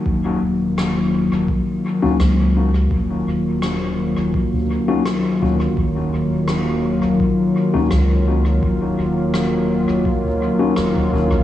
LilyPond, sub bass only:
\new Staff \with { instrumentName = "Sub bass" } { \clef bass \time 4/4 \key ees \minor \tempo 4 = 84 ees,,8 ees,,4~ ees,,16 ees,,16 r4 des,4 | ees,,8 ees,,4~ ees,,16 ees,,16 r2 | ees,,8 ees,,4~ ees,,16 ees,,16 r4 des,4 | ees,,8 ees,,4~ ees,,16 ees,,16 r4 ees,,8 ees,,16 bes,,16 | }